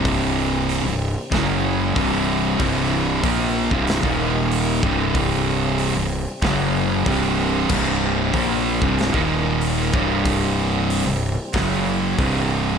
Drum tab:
CC |----------------|----------------|----------------|x---------------|
HH |o---o---o---o---|o---o---o---o---|o---o---o---o---|----o---o---o---|
SD |--------o-------|--------o-------|--------o-------|--------o-------|
BD |o-------o---o---|o---o--o-o----o-|o-------o---o---|o---o--o-o----o-|

CC |----------------|
HH |o---o---o---o---|
SD |--------o-------|
BD |o-------o---o---|